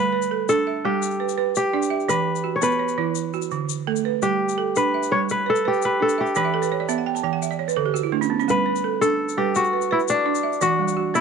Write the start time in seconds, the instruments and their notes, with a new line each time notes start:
Already playing: balafon G3 A4 B4, kora B4
0.13 balafon B4
0.22 shaker
0.31 balafon A4
0.49 balafon D4, kora A4, shaker
0.67 balafon E5
0.85 balafon G3 G4, kora G4
1.02 shaker
1.20 balafon B4
1.29 shaker
1.38 balafon B4
1.55 kora G4, shaker
1.73 balafon D4 D5
1.82 shaker
1.90 balafon E5
2.00 shaker
2.08 balafon E3, kora B4, shaker
2.35 shaker
2.44 balafon F#4
2.56 kora C#5
2.62 balafon B3, kora B4, shaker
2.79 balafon C#5
2.88 shaker
2.98 balafon E3 E4
3.15 shaker
3.33 balafon F#4, shaker
3.42 shaker
3.51 balafon D3, shaker
3.69 shaker
3.87 balafon A3 A4
3.96 shaker
4.05 balafon B4
4.22 balafon G3, kora G4, shaker
4.49 shaker
4.58 balafon A4
4.76 balafon D4, kora B4, shaker
4.94 balafon E5
5.03 shaker
5.12 balafon G3 G4, kora C#5
5.29 kora B4, shaker
5.46 kora A4, balafon B4
5.56 shaker
5.65 kora G4, balafon B4
5.73 shaker
5.82 kora B4, shaker
6.00 balafon D4, kora A4
6.09 shaker
6.18 kora G4, balafon E5
6.26 shaker
6.35 balafon E3, kora B4, shaker
6.45 balafon E5
6.54 balafon A4
6.62 balafon B4, shaker
6.72 balafon C#5
6.80 balafon D5
6.89 balafon B3 E5, shaker
6.98 balafon F#5
7.06 balafon G5
7.15 balafon A5, shaker
7.24 balafon E3 G5
7.33 balafon F#5
7.42 balafon E5, shaker
7.51 balafon D5, shaker
7.59 balafon C#5
7.68 balafon B4, shaker
7.76 balafon D3 A4
7.86 balafon G4
7.94 balafon F#4, shaker
8.03 balafon E4
8.12 balafon A3 D4
8.21 balafon C#4, shaker
8.30 balafon B3
8.39 balafon C#4, shaker
8.48 balafon G3, kora B4, shaker
8.66 balafon B4
8.76 shaker
8.84 balafon A4
9.01 balafon D4, kora A4, shaker
9.29 shaker
9.38 balafon G3 B4, kora G4
9.55 kora F#4, shaker
9.64 shaker
9.73 balafon B4
9.82 shaker
9.91 kora E4, balafon B4
10.00 shaker
10.08 kora D4, shaker
10.26 balafon D4 D5
10.35 shaker
10.43 balafon E5
10.53 shaker
10.61 balafon E3, kora F#4, shaker
10.79 balafon G3
10.88 shaker
10.97 balafon F#4
11.14 balafon B3, kora E4, shaker